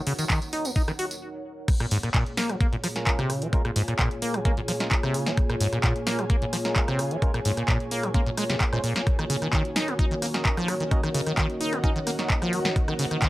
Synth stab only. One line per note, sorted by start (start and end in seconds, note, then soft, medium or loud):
2.96 3.05 G#3 medium
2.96 3.05 C#4 medium
2.96 3.05 F4 medium
2.96 3.05 A#4 medium
3.07 3.21 G#3 medium
3.07 3.21 C#4 medium
3.07 3.21 F4 medium
3.07 3.21 A#4 medium
3.53 3.62 G#3 loud
3.53 3.62 C#4 medium
3.53 3.62 F4 medium
3.53 3.62 A#4 loud
4.45 4.54 G#3 loud
4.45 4.54 C#4 medium
4.45 4.54 F4 medium
4.45 4.54 A#4 loud
4.80 4.94 G#3 medium
4.80 4.94 C#4 medium
4.80 4.94 F4 medium
4.80 4.94 A#4 medium
6.65 6.74 G#3 medium
6.65 6.74 C#4 medium
6.65 6.74 F4 medium
6.65 6.74 A#4 medium
6.76 6.90 G#3 medium
6.76 6.90 C#4 medium
6.76 6.90 F4 medium
6.76 6.90 A#4 medium
7.22 7.31 G#3 medium
7.22 7.31 C#4 medium
7.22 7.31 F4 medium
7.22 7.31 A#4 loud
8.14 8.24 G#3 loud
8.14 8.24 C#4 medium
8.14 8.24 F4 medium
8.14 8.24 A#4 loud
8.73 8.81 G#3 medium
8.73 8.81 C#4 medium
8.73 8.81 F4 medium
8.73 8.81 C5 loud
10.34 10.44 C#4 medium
10.34 10.44 F#4 medium
10.34 10.44 A#4 medium
10.34 10.44 D#5 medium
10.45 10.60 C#4 medium
10.45 10.60 F#4 medium
10.45 10.60 A#4 medium
10.45 10.60 D#5 medium
10.91 11.01 C#4 loud
10.91 11.01 F#4 medium
10.91 11.01 A#4 medium
10.91 11.01 D#5 loud
11.84 11.93 C#4 loud
11.84 11.93 F#4 medium
11.84 11.93 A#4 medium
11.84 11.93 D#5 loud
12.19 12.32 C#4 medium
12.19 12.32 F#4 medium
12.19 12.32 A#4 medium
12.19 12.32 D#5 medium